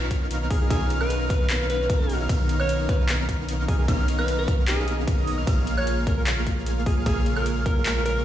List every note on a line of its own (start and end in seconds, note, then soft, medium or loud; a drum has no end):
0.00 5.45 B1 medium
0.00 5.43 D#3 medium
0.00 0.59 B3 medium
0.00 5.43 C#4 medium
0.00 0.58 D#4 medium
0.00 2.26 F4 medium
0.00 0.58 A#4 medium
0.00 0.58 C#5 medium
0.00 0.59 F5 medium
0.00 8.25 A#5 medium
0.00 0.58 F6 loud
0.11 kick medium
0.11 closed hi-hat medium
0.31 closed hi-hat medium
0.51 0.57 G#4 medium
0.51 kick loud
0.51 open hi-hat medium
0.61 0.68 B3 medium
0.61 0.68 D#4 medium
0.61 0.67 G#4 medium
0.61 0.68 A#4 medium
0.61 0.68 C#5 medium
0.61 0.68 F5 medium
0.61 0.68 F6 medium
0.70 0.98 B3 medium
0.70 0.98 D#4 medium
0.70 0.86 G#4 loud
0.70 0.98 A#4 medium
0.70 0.98 C#5 medium
0.70 0.98 F5 medium
0.70 0.98 F6 medium
0.70 kick loud
0.70 closed hi-hat medium
0.70 ride soft
0.90 closed hi-hat medium
1.01 1.28 B3 medium
1.01 1.28 D#4 medium
1.01 1.28 A#4 medium
1.01 1.16 B4 loud
1.01 1.28 C#5 medium
1.01 1.28 F5 loud
1.01 1.28 F6 loud
1.01 high woodblock medium
1.10 closed hi-hat medium
1.30 2.17 B3 medium
1.30 1.68 B4 loud
1.30 2.17 F5 loud
1.30 2.17 F6 loud
1.30 kick loud
1.30 closed hi-hat medium
1.50 clap loud
1.50 closed hi-hat medium
1.70 2.26 B4 medium
1.70 closed hi-hat medium
1.90 kick loud
1.90 closed hi-hat medium
2.09 open hi-hat medium
2.20 2.27 B3 medium
2.20 2.27 D#4 medium
2.20 2.27 A#4 medium
2.20 2.27 C#5 medium
2.20 2.27 F5 medium
2.20 2.27 F6 medium
2.29 2.57 B3 medium
2.29 2.57 D#4 medium
2.29 5.44 D#4 loud
2.29 2.57 A#4 medium
2.29 2.57 C#5 medium
2.29 2.57 F6 medium
2.29 kick loud
2.29 closed hi-hat medium
2.29 ride medium
2.49 closed hi-hat medium
2.60 2.87 B3 medium
2.60 2.87 D#4 medium
2.60 2.87 A#4 medium
2.60 2.87 C#5 medium
2.60 2.75 C#5 loud
2.60 2.87 F5 loud
2.60 2.87 F6 loud
2.60 high woodblock medium
2.69 closed hi-hat medium
2.89 3.76 B3 medium
2.89 3.76 D#4 medium
2.89 3.76 A#4 medium
2.89 2.96 B4 loud
2.89 3.76 C#5 medium
2.89 3.76 F5 loud
2.89 3.76 F6 loud
2.89 kick loud
2.89 closed hi-hat medium
3.00 3.05 B4 medium
3.09 clap loud
3.09 closed hi-hat medium
3.29 kick medium
3.29 closed hi-hat medium
3.49 closed hi-hat medium
3.68 3.75 G#4 medium
3.68 kick loud
3.68 open hi-hat medium
3.79 3.86 B3 medium
3.79 3.86 D#4 medium
3.79 3.85 G#4 medium
3.79 3.86 A#4 medium
3.79 3.86 C#5 medium
3.79 3.86 F5 medium
3.79 3.86 F6 medium
3.88 4.16 B3 medium
3.88 4.16 D#4 medium
3.88 4.16 A#4 medium
3.88 4.16 C#5 medium
3.88 4.16 F5 medium
3.88 4.16 F6 medium
3.88 kick loud
3.88 closed hi-hat medium
3.88 ride medium
4.08 closed hi-hat medium
4.19 4.46 B3 medium
4.19 4.46 D#4 medium
4.19 4.46 A#4 medium
4.19 4.34 B4 medium
4.19 4.46 C#5 medium
4.19 4.46 F5 loud
4.19 4.46 F6 medium
4.19 high woodblock medium
4.28 closed hi-hat medium
4.38 4.54 B4 medium
4.48 5.16 B3 medium
4.48 5.16 D#4 medium
4.48 5.16 A#4 medium
4.48 5.16 C#5 medium
4.48 5.16 F5 loud
4.48 5.16 F6 medium
4.48 kick loud
4.48 closed hi-hat medium
4.68 4.98 G#4 medium
4.68 clap loud
4.68 closed hi-hat medium
4.88 closed hi-hat medium
5.08 kick loud
5.08 closed hi-hat medium
5.18 5.35 B3 loud
5.18 5.35 D#4 medium
5.18 5.35 A#4 medium
5.18 5.35 C#5 medium
5.18 5.35 D#5 loud
5.18 5.35 D#6 loud
5.27 open hi-hat medium
5.38 5.45 B3 medium
5.38 5.45 D#4 medium
5.38 5.45 A#4 medium
5.38 5.45 C#5 medium
5.38 5.45 F5 medium
5.38 5.45 F6 medium
5.47 8.25 A#1 medium
5.47 8.25 C#3 medium
5.47 8.25 G#3 medium
5.47 5.75 A#3 medium
5.47 5.75 F4 medium
5.47 8.25 F4 medium
5.47 5.75 G#4 medium
5.47 5.75 C#5 medium
5.47 5.75 F5 medium
5.47 5.75 F6 medium
5.47 kick loud
5.47 closed hi-hat medium
5.47 ride medium
5.67 closed hi-hat medium
5.78 6.05 A#3 medium
5.78 6.05 F4 medium
5.78 6.05 G#4 medium
5.78 6.05 C#5 medium
5.78 5.93 C#5 medium
5.78 6.05 F5 loud
5.78 6.05 F6 medium
5.78 high woodblock medium
5.87 closed hi-hat medium
6.07 6.94 A#3 medium
6.07 6.94 F4 medium
6.07 6.94 G#4 medium
6.07 6.14 A#4 medium
6.07 6.94 C#5 medium
6.07 6.94 F5 medium
6.07 6.94 F6 loud
6.07 kick loud
6.07 closed hi-hat medium
6.17 6.23 A#4 medium
6.27 clap loud
6.27 closed hi-hat medium
6.47 kick medium
6.47 closed hi-hat medium
6.66 closed hi-hat medium
6.86 6.93 G#4 medium
6.86 kick loud
6.86 open hi-hat medium
6.97 7.04 A#3 medium
6.97 7.04 F4 medium
6.97 7.04 G#4 medium
6.97 7.03 G#4 medium
6.97 7.04 C#5 medium
6.97 7.04 F5 medium
6.97 7.04 F6 medium
7.06 7.34 A#3 medium
7.06 7.34 F4 medium
7.06 7.34 G#4 medium
7.06 7.22 G#4 loud
7.06 7.34 C#5 medium
7.06 7.34 F5 medium
7.06 7.34 F6 medium
7.06 kick loud
7.06 closed hi-hat medium
7.06 ride medium
7.26 closed hi-hat medium
7.37 7.64 A#3 medium
7.37 7.64 F4 medium
7.37 7.64 G#4 medium
7.37 7.52 A#4 medium
7.37 7.64 C#5 medium
7.37 7.64 F5 loud
7.37 7.64 F6 medium
7.37 high woodblock medium
7.46 closed hi-hat medium
7.66 8.25 A#3 medium
7.66 8.25 F4 medium
7.66 8.25 G#4 medium
7.66 8.04 A#4 loud
7.66 8.25 C#5 medium
7.66 8.25 F5 loud
7.66 8.25 F6 medium
7.66 kick loud
7.66 closed hi-hat medium
7.86 clap loud
7.86 closed hi-hat medium
8.06 8.25 A#4 loud
8.06 closed hi-hat medium